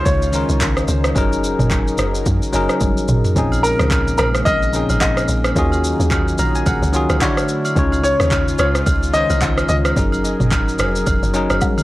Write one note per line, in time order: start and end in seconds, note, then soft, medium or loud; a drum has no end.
0.00 1.18 C#3 medium
0.00 1.14 G#3 medium
0.00 0.33 C#4 medium
0.00 1.14 C#4 medium
0.00 0.34 D#4 medium
0.00 3.32 D#4 medium
0.00 0.35 F4 medium
0.00 1.14 F4 medium
0.00 1.18 C#5 loud
0.05 0.44 C#2 loud
0.05 0.57 C#5 loud
0.05 kick loud
0.05 shaker medium
0.22 shaker medium
0.32 1.01 D#3 medium
0.32 1.01 C#4 medium
0.32 1.01 D#4 medium
0.32 1.02 F4 medium
0.32 1.02 A#4 medium
0.32 shaker medium
0.49 0.84 C2 medium
0.49 shaker medium
0.60 kick loud
0.60 clap loud
0.60 shaker medium
0.77 cross-stick medium
0.77 shaker medium
0.88 1.13 C#2 loud
0.88 shaker medium
1.04 cross-stick loud
1.04 shaker medium
1.15 1.54 F#1 loud
1.15 7.17 C#3 medium
1.15 2.04 F#3 medium
1.15 3.34 F#3 medium
1.15 2.05 C#4 medium
1.15 2.05 D#4 medium
1.15 3.34 G#4 medium
1.15 2.06 G#4 medium
1.15 3.34 A#4 medium
1.15 2.06 A#4 loud
1.15 kick loud
1.15 shaker medium
1.33 shaker medium
1.44 shaker loud
1.59 1.94 F#1 loud
1.59 mid tom medium
1.59 shaker medium
1.71 kick loud
1.71 clap medium
1.71 shaker medium
1.88 shaker medium
1.98 2.23 F#1 medium
1.98 cross-stick loud
1.98 shaker medium
2.15 shaker medium
2.26 2.40 F#2 loud
2.26 kick loud
2.26 shaker medium
2.42 shaker medium
2.53 2.68 F#1 medium
2.53 3.21 F#3 medium
2.53 3.21 C#4 medium
2.53 3.22 D#4 medium
2.53 3.22 G#4 medium
2.53 3.22 A#4 loud
2.53 shaker medium
2.69 cross-stick medium
2.69 shaker medium
2.81 2.95 F#1 medium
2.81 kick loud
2.81 high tom medium
2.81 shaker medium
2.97 shaker medium
3.08 3.23 G#1 medium
3.08 mid tom medium
3.08 shaker medium
3.25 floor tom loud
3.25 shaker medium
3.35 3.74 A#1 loud
3.35 4.25 A#2 medium
3.35 4.25 F3 medium
3.35 5.54 G#3 medium
3.35 7.18 A#3 medium
3.35 4.25 C4 medium
3.35 4.26 C#4 medium
3.35 4.26 D#4 medium
3.35 4.26 G#4 loud
3.35 kick loud
3.35 shaker medium
3.52 high agogo medium
3.52 shaker medium
3.63 4.16 A#4 loud
3.63 shaker medium
3.79 4.14 C#2 medium
3.79 cross-stick loud
3.79 shaker medium
3.91 kick loud
3.91 clap medium
3.91 high agogo medium
3.91 shaker medium
4.08 shaker soft
4.18 4.43 A#1 medium
4.18 4.24 A#4 medium
4.18 cross-stick loud
4.18 high agogo medium
4.18 shaker medium
4.35 cross-stick loud
4.35 shaker medium
4.45 4.85 A#1 medium
4.45 4.97 D#5 loud
4.45 kick loud
4.45 high agogo medium
4.45 shaker medium
4.63 shaker medium
4.73 5.41 A#2 medium
4.73 5.41 F3 medium
4.73 5.42 C4 medium
4.73 5.42 C#4 medium
4.73 5.42 D#4 medium
4.73 5.43 G#4 medium
4.73 shaker medium
4.89 5.24 G#1 medium
4.89 high agogo medium
4.89 shaker medium
5.00 5.41 D#5 medium
5.00 kick loud
5.00 clap loud
5.00 low woodblock medium
5.00 shaker medium
5.17 cross-stick medium
5.17 high agogo medium
5.17 shaker medium
5.28 5.53 A#1 medium
5.28 shaker medium
5.44 cross-stick loud
5.44 high agogo medium
5.44 shaker soft
5.55 5.95 D#2 loud
5.55 6.45 D#3 medium
5.55 7.20 D#3 medium
5.55 7.74 F#3 medium
5.55 6.45 C#4 medium
5.55 7.20 D#4 medium
5.55 6.46 F4 medium
5.55 6.46 F#4 medium
5.55 7.20 G#4 medium
5.55 6.46 G#4 loud
5.55 kick loud
5.55 shaker medium
5.72 high agogo medium
5.72 shaker medium
5.84 shaker loud
6.00 6.34 D#2 loud
6.00 shaker medium
6.11 kick loud
6.11 clap medium
6.11 high agogo medium
6.11 shaker medium
6.28 shaker medium
6.38 6.63 A#1 medium
6.38 6.54 A#5 medium
6.38 high agogo medium
6.38 shaker medium
6.55 6.66 G#5 medium
6.55 shaker medium
6.66 6.81 A#1 medium
6.66 7.18 F#5 medium
6.66 kick loud
6.66 high agogo medium
6.66 shaker medium
6.82 7.07 C#2 loud
6.82 shaker medium
6.93 7.21 D#3 medium
6.93 7.21 C#4 medium
6.93 7.22 F4 medium
6.93 7.22 F#4 medium
6.93 7.23 G#4 loud
6.93 shaker medium
7.10 7.20 C#2 medium
7.10 cross-stick medium
7.10 high agogo medium
7.10 shaker medium
7.21 7.67 D3 medium
7.21 7.76 D3 medium
7.21 7.76 A3 medium
7.21 7.67 D4 medium
7.21 7.76 D4 medium
7.21 7.76 E4 medium
7.21 7.68 E4 medium
7.21 7.68 F#4 medium
7.21 7.68 C#5 loud
7.21 7.73 D5 medium
7.21 kick loud
7.21 clap loud
7.21 low woodblock medium
7.21 shaker medium
7.37 cross-stick medium
7.37 high agogo medium
7.37 shaker medium
7.49 shaker medium
7.65 high agogo medium
7.65 shaker medium
7.76 8.15 C#2 loud
7.76 8.65 C#3 medium
7.76 9.95 G#3 medium
7.76 8.65 C#4 medium
7.76 9.95 C#4 medium
7.76 11.83 D#4 medium
7.76 8.66 D#4 medium
7.76 9.94 F4 medium
7.76 8.66 F4 medium
7.76 8.67 C#5 loud
7.76 kick loud
7.76 shaker medium
7.92 high agogo medium
7.92 shaker medium
8.03 8.57 C#5 loud
8.03 shaker loud
8.20 8.54 D#2 medium
8.20 cross-stick loud
8.20 shaker medium
8.31 kick loud
8.31 clap medium
8.31 high agogo medium
8.31 shaker medium
8.48 shaker medium
8.58 8.83 C#2 medium
8.58 8.65 C#5 loud
8.58 cross-stick loud
8.58 high agogo medium
8.58 shaker medium
8.75 cross-stick medium
8.75 shaker medium
8.86 9.25 C#2 medium
8.86 kick loud
8.86 high agogo medium
8.86 shaker medium
9.03 shaker medium
9.13 9.81 D#3 medium
9.13 9.82 C#4 medium
9.13 9.82 D#4 medium
9.13 9.83 F4 medium
9.13 9.83 C5 medium
9.13 9.67 D#5 loud
9.13 shaker medium
9.30 9.65 C2 medium
9.30 high agogo medium
9.30 shaker medium
9.41 kick medium
9.41 clap loud
9.41 low woodblock medium
9.41 shaker medium
9.58 cross-stick medium
9.58 high agogo medium
9.58 shaker medium
9.69 9.93 C#2 loud
9.69 9.75 D#5 loud
9.69 shaker medium
9.85 cross-stick loud
9.85 high agogo medium
9.85 shaker medium
9.96 10.35 F#1 loud
9.96 10.85 F#3 medium
9.96 11.83 F#3 medium
9.96 10.86 C#4 medium
9.96 10.86 D#4 medium
9.96 11.83 G#4 medium
9.96 10.86 G#4 medium
9.96 11.83 A#4 medium
9.96 10.87 A#4 medium
9.96 kick loud
9.96 shaker medium
10.12 high agogo medium
10.12 shaker medium
10.25 shaker medium
10.40 10.75 F#1 medium
10.40 mid tom medium
10.40 shaker medium
10.52 kick loud
10.52 clap medium
10.52 high agogo medium
10.52 shaker medium
10.68 shaker medium
10.79 11.04 F1 medium
10.79 cross-stick loud
10.79 high agogo medium
10.79 shaker medium
10.96 shaker medium
11.06 11.21 F1 loud
11.06 kick loud
11.06 high agogo medium
11.06 shaker medium
11.23 11.47 F#1 loud
11.23 shaker medium
11.33 11.83 F#3 medium
11.33 11.83 C#4 medium
11.33 11.83 D#4 medium
11.33 11.83 G#4 medium
11.33 11.83 A#4 loud
11.33 shaker medium
11.50 11.60 F#1 medium
11.50 cross-stick medium
11.50 high agogo medium
11.50 shaker medium
11.61 kick loud
11.61 high tom medium
11.61 low woodblock medium
11.61 shaker medium
11.78 mid tom medium
11.78 high agogo medium
11.78 shaker medium